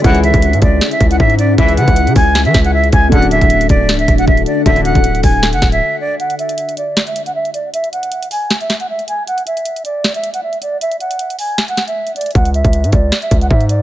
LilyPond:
<<
  \new Staff \with { instrumentName = "Flute" } { \time 4/4 \key cis \phrygian \tempo 4 = 156 fis''8 e''4 d''8. e''8 fis''16 e''8 d''8 | e''8 fis''4 gis''8. e''8 fis''16 e''8 gis''8 | fis''8 e''4 d''8. e''8 fis''16 e''8 d''8 | e''8 fis''4 gis''8. fis''8 e''8. d''8 |
fis''8 e''4 d''8. e''8 fis''16 e''8 d''8 | e''8 fis''4 gis''8. e''8 fis''16 e''8 gis''8 | fis''8 e''4 d''8. e''8 fis''16 e''8 d''8 | e''8 fis''4 gis''8. fis''8 e''8. d''8 |
fis''8 e''4 d''8. e''8 fis''16 e''8 d''8 | }
  \new Staff \with { instrumentName = "Ambient pad" } { \time 4/4 \key cis \phrygian <cis cis' e' gis'>1~ | <cis cis' e' gis'>1 | <d d' fis' a'>1~ | <d d' fis' a'>1 |
r1 | r1 | r1 | r1 |
r1 | }
  \new Staff \with { instrumentName = "Grand piano" } { \time 4/4 \key cis \phrygian <gis cis' e' gis'>1~ | <gis cis' e' gis'>1 | <a d' fis' a'>1~ | <a d' fis' a'>1 |
r1 | r1 | r1 | r1 |
r1 | }
  \new Staff \with { instrumentName = "Brass ensemble" } { \clef bass \time 4/4 \key cis \phrygian <cis, gis, e>4 r2. | <cis, gis, e>4 r2. | <a,, fis, d>4 r2. | <a,, fis, d>4 r2. |
r1 | r1 | r1 | r1 |
r1 | }
  \new Staff \with { instrumentName = "808-style bass" } { \clef bass \time 4/4 \key cis \phrygian cis,8. cis,8 gis,16 cis,8 r8 cis,8 gis,4 | cis,8 cis16 cis,8 cis16 cis,8. e16 cis,4 cis,8 | d,,8. d,,8. d,,8 cis,,16 d,,16 d,,8 d,,8 r8 | d,,8. d,,8. d,,8. fis,,16 d,,8 r4 |
r1 | r1 | r1 | r1 |
cis,8. cis,8 gis,16 cis,8 r8 cis,8 gis,4 | }
  \new DrumStaff \with { instrumentName = "Drums" } \drummode { \time 4/4 <hh bd>16 hh16 hh16 <hh bd>16 hh16 hh16 <hh bd>8 <hh sn>16 hh16 <hh bd>16 hh16 bd16 hh16 hh8 | <hh bd>16 hh16 hh16 <hh bd>16 hh16 hh16 <hho bd>8 <hh sn>16 hh16 <hh bd sn>16 hh16 r16 hh16 <hh bd>8 | <hh bd>16 hh16 hh16 <hh bd>16 hh16 hh16 <hh bd>8 <hh sn>16 hh16 <hh bd>16 hh16 bd16 hh16 hh8 | <hh bd>16 hh16 hh16 <hh bd>16 hh16 hh16 <hho bd>8 <hh sn>16 hh16 <hh bd sn>16 hh16 r4 |
hh16 hh16 hh16 hh16 hh16 hh16 hh8 <hh sn>16 hh16 hh16 hh16 r16 hh16 hh8 | hh16 hh16 hh16 hh16 hh16 hh16 hho8 <hh sn>16 hh16 <hh sn>16 hh16 r16 hh16 hh8 | hh16 hh16 hh16 hh16 hh16 hh16 hh8 <hh sn>16 hh16 hh16 hh16 r16 hh16 hh8 | hh16 hh16 hh16 hh16 hh16 hh16 hho8 <hh sn>16 hh16 <hh sn>16 hh16 r16 hh16 hh32 hh32 hh32 hh32 |
<hh bd>16 hh16 hh16 <hh bd>16 hh16 hh16 <hh bd>8 <hh sn>16 hh16 <hh bd>16 hh16 bd16 hh16 hh8 | }
>>